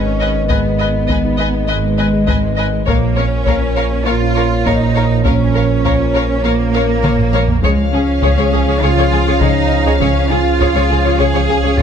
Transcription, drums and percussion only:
0.50 taiko medium
1.09 taiko medium
2.28 taiko medium
2.88 taiko medium
3.47 taiko medium
4.66 taiko medium
5.26 taiko medium
5.85 taiko medium
7.04 taiko mid medium
7.19 taiko low-mid medium
7.34 taiko high medium
7.48 taiko low medium
7.63 taiko medium
8.22 taiko medium
9.41 taiko medium
10.00 taiko medium
10.60 taiko medium
11.79 taiko medium

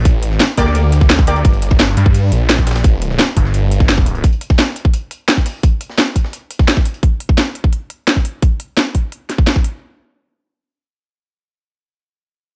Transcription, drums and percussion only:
0.05 kick loud
0.05 closed hi-hat medium
0.23 closed hi-hat loud
0.23 closed hi-hat medium
0.31 snare soft
0.40 snare loud
0.40 closed hi-hat medium
0.57 kick medium
0.57 closed hi-hat medium
0.66 snare soft
0.75 closed hi-hat medium
0.92 closed hi-hat medium
1.01 kick loud
1.01 snare soft
1.10 snare loud
1.10 closed hi-hat medium
1.19 kick loud
1.27 closed hi-hat loud
1.27 closed hi-hat medium
1.36 closed hi-hat soft
1.45 kick loud
1.45 closed hi-hat medium
1.54 closed hi-hat soft
1.62 closed hi-hat medium
1.71 kick loud
1.71 snare soft
1.80 snare loud
1.80 closed hi-hat medium
1.88 snare medium
1.97 closed hi-hat medium
2.06 kick loud
2.15 closed hi-hat medium
2.32 closed hi-hat medium
2.49 snare loud
2.49 closed hi-hat medium
2.58 kick medium
2.58 closed hi-hat soft
2.67 snare medium
2.67 closed hi-hat medium
2.71 snare medium
2.71 closed hi-hat medium
2.76 snare loud
2.76 closed hi-hat medium
2.84 kick loud
2.84 closed hi-hat medium
3.02 closed hi-hat medium
3.10 snare soft
3.19 snare loud
3.19 closed hi-hat medium
3.37 kick medium
3.37 closed hi-hat medium
3.45 snare soft
3.54 closed hi-hat medium
3.71 closed hi-hat medium
3.80 kick loud
3.80 snare soft
3.89 snare loud
3.89 closed hi-hat medium
3.98 kick loud
4.06 closed hi-hat medium
4.15 closed hi-hat soft
4.24 kick loud
4.24 closed hi-hat medium
4.33 closed hi-hat soft
4.41 closed hi-hat medium
4.50 kick loud
4.50 snare soft
4.59 snare loud
4.59 closed hi-hat medium
4.67 snare medium
4.76 closed hi-hat medium
4.85 kick loud
4.94 closed hi-hat medium
5.11 closed hi-hat medium
5.28 snare loud
5.28 closed hi-hat medium
5.37 kick medium
5.37 closed hi-hat soft
5.46 snare soft
5.46 closed hi-hat medium
5.46 open hi-hat medium
5.63 kick loud
5.63 closed hi-hat medium
5.81 closed hi-hat medium
5.90 snare soft
5.98 snare loud
5.98 closed hi-hat medium
6.16 kick medium
6.16 closed hi-hat medium
6.24 snare soft
6.33 closed hi-hat medium
6.51 closed hi-hat medium
6.59 kick loud
6.59 snare soft
6.68 snare loud
6.68 closed hi-hat medium
6.77 kick loud
6.85 closed hi-hat medium
6.94 closed hi-hat soft
7.03 kick loud
7.03 closed hi-hat medium
7.20 closed hi-hat medium
7.29 kick loud
7.38 snare loud
7.38 closed hi-hat medium
7.55 closed hi-hat medium
7.64 kick medium
7.73 closed hi-hat medium
7.90 closed hi-hat medium
8.08 snare loud
8.08 closed hi-hat medium
8.16 kick medium
8.25 closed hi-hat medium
8.42 kick loud
8.42 closed hi-hat medium
8.60 closed hi-hat medium
8.77 snare loud
8.77 closed hi-hat medium
8.95 kick medium
8.95 closed hi-hat medium
9.12 closed hi-hat medium
9.30 snare soft
9.30 closed hi-hat medium
9.38 kick loud
9.47 snare loud
9.47 closed hi-hat medium
9.56 kick loud
9.64 closed hi-hat medium

